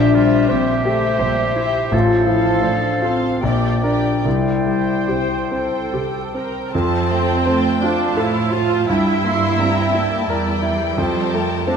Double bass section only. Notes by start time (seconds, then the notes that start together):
Already playing: A#1
0.50 A#1
1.21 A#1
1.93 A1
2.64 A1
3.41 A#1
4.25 C2
5.09 C2
5.94 C2
6.72 F2
8.16 A2
8.88 G2
10.29 E2
10.97 F2